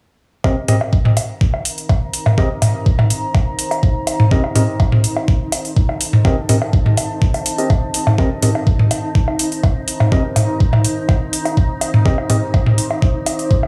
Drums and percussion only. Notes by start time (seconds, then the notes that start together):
0.44 kick, low woodblock
0.68 mid tom, open hi-hat
0.81 low woodblock
0.93 kick
1.05 mid tom
1.17 open hi-hat, low woodblock
1.41 kick
1.54 low woodblock
1.65 open hi-hat
1.78 open hi-hat
1.89 kick, low woodblock
2.14 open hi-hat
2.26 mid tom, low woodblock
2.38 kick
2.62 mid tom, open hi-hat, low woodblock
2.86 kick
2.99 mid tom, low woodblock
3.10 open hi-hat
3.35 kick, low woodblock
3.59 open hi-hat
3.71 open hi-hat, low woodblock
3.83 kick
4.07 open hi-hat, low woodblock
4.20 mid tom
4.31 kick
4.44 low woodblock
4.55 mid tom, open hi-hat
4.80 kick, low woodblock
4.92 mid tom
5.04 open hi-hat
5.17 low woodblock
5.28 kick
5.52 open hi-hat, low woodblock
5.65 open hi-hat
5.77 kick
5.89 low woodblock
6.01 open hi-hat
6.13 mid tom
6.25 kick, low woodblock
6.49 mid tom, open hi-hat
6.62 low woodblock
6.73 kick
6.86 mid tom
6.97 open hi-hat, low woodblock
7.22 kick
7.34 open hi-hat, low woodblock
7.46 open hi-hat
7.58 open hi-hat
7.70 kick, low woodblock
7.94 open hi-hat
8.07 mid tom, low woodblock
8.18 kick, low woodblock
8.42 mid tom, open hi-hat
8.55 low woodblock
8.67 kick
8.79 mid tom
8.91 open hi-hat, low woodblock
9.15 kick
9.28 low woodblock
9.39 open hi-hat
9.52 open hi-hat
9.63 kick, low woodblock
9.88 open hi-hat
10.00 mid tom, low woodblock
10.12 kick
10.36 mid tom, open hi-hat, low woodblock
10.60 kick
10.73 mid tom, low woodblock
10.85 open hi-hat
11.09 kick, low woodblock
11.33 open hi-hat
11.46 open hi-hat, low woodblock
11.57 kick
11.81 open hi-hat, low woodblock
11.94 mid tom
12.06 kick
12.18 low woodblock
12.30 mid tom, open hi-hat
12.54 kick, low woodblock
12.66 mid tom
12.78 open hi-hat
12.91 low woodblock
13.02 kick
13.26 open hi-hat, low woodblock
13.39 open hi-hat
13.51 kick
13.63 low woodblock